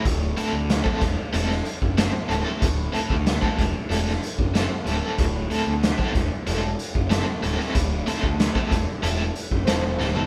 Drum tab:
HH |x-x-x-x-x-x-x-x-|x-x-x-x-x-x-x-x-|x-x-x-x-x-x-x-x-|x-x-x-x-x-x-x---|
SD |----o-o--o--o---|----o----o--o---|----o-------o--o|--o-o-------o-o-|
FT |----------------|----------------|----------------|---------------o|
BD |o----oo----o----|o--o-oo----o----|o----oo----o----|o--o-oo----o----|